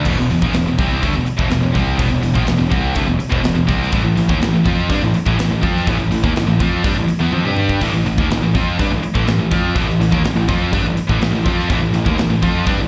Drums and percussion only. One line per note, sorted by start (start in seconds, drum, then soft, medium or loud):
0.05 kick loud
0.05 crash medium
0.30 open hi-hat medium
0.42 kick loud
0.53 snare loud
0.53 open hi-hat medium
0.78 kick loud
0.78 open hi-hat medium
1.03 kick loud
1.03 open hi-hat medium
1.26 open hi-hat medium
1.39 kick medium
1.50 snare loud
1.50 open hi-hat medium
1.75 kick medium
1.75 open hi-hat medium
1.99 kick loud
1.99 open hi-hat medium
2.23 open hi-hat medium
2.35 kick loud
2.47 snare loud
2.47 open hi-hat medium
2.71 kick loud
2.71 open hi-hat medium
2.95 kick loud
2.95 open hi-hat medium
3.20 open hi-hat medium
3.32 kick loud
3.44 snare loud
3.44 open hi-hat medium
3.69 kick loud
3.69 open hi-hat medium
3.82 snare soft
3.92 kick loud
3.92 open hi-hat medium
4.17 open hi-hat medium
4.29 kick loud
4.42 snare loud
4.42 open hi-hat medium
4.66 kick loud
4.66 open hi-hat medium
4.90 kick loud
4.90 open hi-hat medium
5.14 open hi-hat medium
5.26 kick loud
5.39 snare loud
5.39 open hi-hat medium
5.63 kick medium
5.63 open hi-hat soft
5.77 snare soft
5.87 kick loud
5.87 open hi-hat medium
6.12 open hi-hat medium
6.24 kick loud
6.36 snare loud
6.36 open hi-hat medium
6.60 kick loud
6.60 open hi-hat medium
6.84 kick loud
6.84 open hi-hat medium
7.08 open hi-hat medium
7.33 high tom medium
7.45 mid tom medium
7.57 mid tom medium
7.69 kick medium
7.81 kick medium
7.81 open hi-hat medium
8.06 open hi-hat medium
8.18 kick loud
8.31 snare loud
8.31 open hi-hat medium
8.55 kick medium
8.55 open hi-hat medium
8.79 kick loud
8.79 open hi-hat medium
9.03 open hi-hat medium
9.15 kick loud
9.27 snare loud
9.27 open hi-hat medium
9.52 kick medium
9.52 open hi-hat medium
9.76 kick loud
9.76 open hi-hat medium
9.90 snare soft
10.01 open hi-hat medium
10.12 kick loud
10.24 snare loud
10.24 open hi-hat medium
10.49 kick loud
10.49 open hi-hat medium
10.73 kick loud
10.73 open hi-hat medium
10.97 open hi-hat medium
11.09 kick loud
11.22 snare loud
11.22 open hi-hat medium
11.46 kick loud
11.46 open hi-hat medium
11.59 snare soft
11.70 kick loud
11.70 open hi-hat medium
11.94 open hi-hat medium
12.06 kick loud
12.18 snare loud
12.18 open hi-hat medium
12.42 kick loud
12.42 open hi-hat medium
12.66 kick loud
12.66 open hi-hat medium